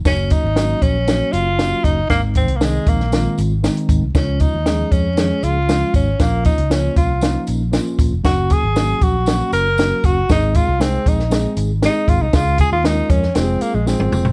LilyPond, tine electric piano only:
\new Staff \with { instrumentName = "Tine electric piano" } { \time 4/4 \key ges \lydian \tempo 4 = 117 <ges a bes des' ges'>8. r16 <ges aes bes des' ges'>8. r16 <ges bes des' ges'>8. r16 <ges bes des' ges'>8. r16 | <ees aes c' ees'>8. r16 <ees aes c' ees'>8. r16 <ees aes c' f'>8. r16 <ees aes c' ees'>8. r16 | <f aes des' f'>8. r16 <ees f aes des' aes'>8. r16 <ees f aes des' aes'>8. r16 <f aes des' f'>8. r16 | <f bes des' f'>8. r16 <f bes des' f'>8. r16 <f bes des' ees'>8. r16 <f bes des' f'>8. r16 |
<ges bes des' ges'>8. r16 <ges bes des' ges'>8. r16 <ges bes des' ges'>8. r16 <ges bes des' ges'>8. r16 | <aes c' ees' aes'>8. r16 <aes c' ees' aes'>8. r16 <aes c' ees' aes'>8. r16 <aes c' ees' g' aes'>8. r16 | <aes des' e' f' aes'>8. r16 <aes des' f' bes'>8. r16 <aes c' f' g' aes'>8. r16 <aes c' f' aes'>8. r16 | }